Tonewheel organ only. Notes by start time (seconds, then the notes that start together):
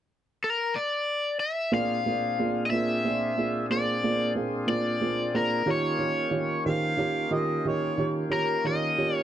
1.72 A#2 C4 D4 F4 G#4
5.66 D#3 A#3 C#4 F4 G4